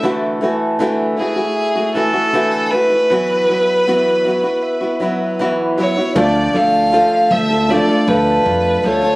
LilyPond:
<<
  \new Staff \with { instrumentName = "Violin" } { \time 4/4 \key d \lydian \tempo 4 = 78 r4. gis'4 a'4 b'8~ | b'2. r8 cis''8 | d''8 f''4 e''8 d''8 b'4 cis''8 | }
  \new Staff \with { instrumentName = "Mandolin" } { \time 4/4 \key d \lydian a8 a'8 e''4 e''8 fis'8 a'8 e''8 | b8 b'8 e''8 b'8 e''8 fis'8 b'8 e''8 | <a a''>16 f'16 a'16 a''16 f'16 a''16 a'16 a''16 <a a''>16 f'16 a'16 a''16 f'16 a''16 a'16 a''16 | }
  \new Staff \with { instrumentName = "Nylon-string guitar" } { \time 4/4 \key d \lydian <d e a e' fis'>8 <e a e' fis'>8 <d e a e' fis'>8 <e a e' fis'>16 <a e' fis'>8 <a e' fis'>16 <e a e' fis'>16 <a e' fis'>16 <d e a e' fis'>8 <e a e' fis'>16 <a e' fis'>16 | <e fis b e' fis'>8 <fis b e' fis'>8 <e fis b e' fis'>8 <fis b e' fis'>16 <b e' fis'>8 <b e' fis'>16 <fis b e' fis'>8 <e fis b e' fis'>8 <fis b e' fis'>16 <b e' fis'>16 | <d f a f' a'>8 <f a f' a'>8 <d f a f' a'>8 <f a f' a'>16 <a f' a'>16 <d f a f' a'>16 <a f' a'>16 <f a f' a'>4 <f a f' a'>16 <a f' a'>16 | }
  \new Staff \with { instrumentName = "Upright piano" } { \time 4/4 \key d \lydian r1 | r1 | <a d' f' d''>4. r8 <a d' f' d''>4. r8 | }
  \new Staff \with { instrumentName = "Upright bass" } { \clef bass \time 4/4 \key d \lydian r1 | r1 | d,8 d,8. r16 d,8. r16 d,8 f,8 d,8 | }
>>